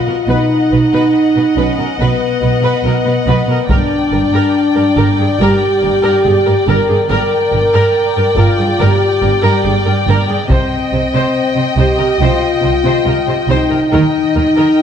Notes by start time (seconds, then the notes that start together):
Already playing: F4 D#5 F#5
0.08 B2 A#4
0.29 B1 B2 D#4 B4 D#5 F#5
0.72 B1 B2 B4
0.94 B2 B4
1.36 B2 B4
1.56 B1 B2 C#4 B4
1.79 B2 A#4
1.99 B1 B2 B3 B4
2.42 B1 B2 B4
2.63 B2 B4
2.84 B1 B2 A#4
3.06 B2 B4
3.27 B1 B2 B4
3.48 B2 A#4
3.69 G1 G2 D4 A#4 D5 G5, taiko
4.12 G1 G2 A#4
4.33 G2 A#4
4.75 G2 A#4
4.97 G1 G2 A#4
5.19 G2 G#4
5.40 G1 G2 G4 A#4
5.83 G1 G2 A#4
6.03 G2 A#4
6.25 G1 G2 G#4
6.46 G2 A#4
6.68 G1 G2 A#4
6.89 G2 G#4
7.09 G1 G2 A#4 D5 G5
7.52 G1 G2 A#4
7.74 G2 A#4
8.16 G2 A#4
8.37 G1 G2 F4 A#4
8.59 G2 G#4
8.80 G1 G2 G4 A#4
9.22 G1 G2 A#4
9.43 G2 A#4
9.64 G1 G2 G#4
9.86 G2 A#4
10.08 G1 G2 A#4
10.29 G2 G#4
10.49 C2 C3 C4 C5 D#5 G5, taiko
10.92 C2 C3 C5
11.14 C3 C5
11.56 C3 C5
11.77 C2 C3 G4 C5
11.98 C3 A#4
12.19 C2 C3 F4 C5
12.62 C2 C3 C5
12.84 C3 C5
13.05 C2 C3 A#4
13.27 C3 C5
13.48 C2 C3 D#4 C5
13.70 C3 A#4
13.91 D#2 D#3 D#4 A#4 D#5 G5
14.36 D#2 D#3 A#4
14.56 D#3 A#4